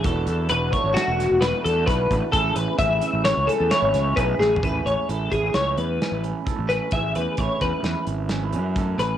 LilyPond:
<<
  \new Staff \with { instrumentName = "Clean electric guitar" } { \time 5/4 \key a \major \tempo 4 = 131 a'4 b'8 cis''8 fis'4 b'8 a'8 b'4 | a'8 b'8 e''4 cis''8 a'8 cis''4 b'8 gis'8 | b'8 cis''8 a'8 gis'8 cis''8 b'4 r4 b'8 | e''8 b'8 cis''8 b'4 r2 b'8 | }
  \new Staff \with { instrumentName = "Clean electric guitar" } { \time 5/4 \key a \major << { <d' fis'>4 fis'8 d'4 fis'8 fis'8 d'8 <d' fis'>4 | <cis' e' gis'>4 cis'16 e'16 cis'4 gis'8 e'8 cis'8 <cis' e' gis'>4 | <e cis' e' gis'>8 cis'8 e'8 cis'4. cis'16 e'16 cis'8 a'8 cis'8 | gis'8 cis'8 e'8 cis'4. cis'16 e'16 cis'8 a'8 cis'8 | } \\ { e4. a4 b,4. e4 | a,4. e4 a,4. a,4 | a,4 e4. a,4. a,4 | a,4 e2. a,4 | } >> }
  \new Staff \with { instrumentName = "Fingered electric bass" } { \clef bass \time 5/4 \key a \major e,,8 e,8 e,,8 r16 gis,,16 r16 e,,8 e,,8 r16 e,8 b,,8 a,,16 r16 | a,,8 a,,16 r16 a,,8 r16 a,,8 cis,16 r16 e,16 r16 gis,,16 cis,8 b,,8 a,,8 | a,,8 a,,16 r16 a,,8 a,,8 cis,8 e,8 r16 a,,8 r8 a,,8 r16 | a,,8 e,16 r16 a,,16 r16 e,16 r16 e,16 r16 gis,,4 fis,4 a,,8 | }
  \new DrumStaff \with { instrumentName = "Drums" } \drummode { \time 5/4 <hh bd>8 hh8 hh8 <hh bd>8 <hh sn>8 <hh sn>8 <hh sn>8 hh8 <hh bd sn>8 <hh bd>8 | <hh bd>8 hh8 <hh bd sn>8 hh8 <hh sn>8 hh8 <hh sn>8 <hh sn>8 \tuplet 3/2 { <hh bd>16 r16 r16 sn16 r16 tomfh16 } | <hh bd>8 hh8 hh8 <hh bd>8 <hh sn>8 hh8 <hh sn>8 hh8 <hh bd>8 <hh sn>8 | <hh bd>8 hh8 <hh bd>8 <hh bd sn>8 <hh sn>8 hh8 <hh sn>8 hh8 <hh bd>8 <hh sn>8 | }
>>